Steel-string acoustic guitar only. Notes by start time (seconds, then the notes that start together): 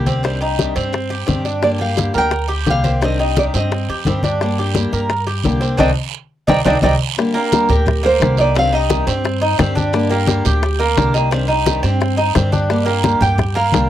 0.06 A#3 D4 G4
0.23 C3 D#3 G3 D4 G4
0.41 G3 D4 G4
0.59 C3 D#3 G3 D4 G4
0.76 G3 D4 G4
0.92 muted steel-string acoustic guitar stroke
1.27 C3 D#3 G3 D4 G4
1.45 G3 D4 G4
1.62 D3 G3 A#3 D4 G4
1.79 A#3 D4 G4
1.96 D3 G3 A#3 D4 G4
2.14 A#3 D4 G4
2.32 muted steel-string acoustic guitar stroke
2.66 D3 G3 A#3 D4 G4
2.84 A#3 D4 G4
3.02 C3 D#3 G3 D4 G4
3.19 G3 D4 G4
3.36 C3 D#3 G3 D4 G4
3.54 G3 D4 G4
3.71 muted steel-string acoustic guitar stroke
4.07 C3 D#3 G3 D4 G4
4.24 G3 D4 G4
4.41 D3 G3 A#3 D4 G4
4.58 A#3 D4 G4
4.75 D3 G3 A#3 D4 G4
4.93 A#3 D4 G4
5.10 muted steel-string acoustic guitar stroke
5.44 D3 G3 A#3 D4 G4
5.61 A#3 D4 G4
5.78 D#3 G3 C4
6.48 D#3 G3 C4
6.65 D#3 G3 C4
6.82 D#3 G3 C4
7.18 D3 G3 A#3 D4 G4
7.35 A#3 D4 G4
7.52 D3 G3 A#3 D4 G4
7.69 A#3 D4 G4
7.86 muted steel-string acoustic guitar stroke
8.20 D3 G3 A#3 D4 G4
8.37 A#3 D4 G4
8.55 C3 D#3 G3 D4 G4
8.73 G3 D4 G4
8.90 C3 D#3 G3 D4 G4
9.07 G3 D4 G4
9.24 muted steel-string acoustic guitar stroke
9.58 C3 D#3 G3 D4 G4
9.76 G3 D4 G4
9.93 D3 G3 A#3 D4 G4
10.10 A#3 D4 G4
10.27 D3 G3 A#3 D4 G4
10.45 A#3 D4 G4
10.63 muted steel-string acoustic guitar stroke
10.97 D3 G3 A#3 D4 G4
11.15 A#3 D4 G4
11.32 C3 D#3 G3 D4 G4
11.49 G3 D4 G4
11.66 C3 D#3 G3 D4 G4
11.83 G3 D4 G4
12.00 muted steel-string acoustic guitar stroke
12.35 C3 D#3 G3 D4 G4
12.52 G3 D4 G4
12.70 D3 G3 A#3 D4 G4
12.86 A#3 D4 G4
13.04 D3 G3 A#3 D4 G4
13.21 A#3 D4 G4
13.38 muted steel-string acoustic guitar stroke
13.72 D3 G3 A#3 D4 G4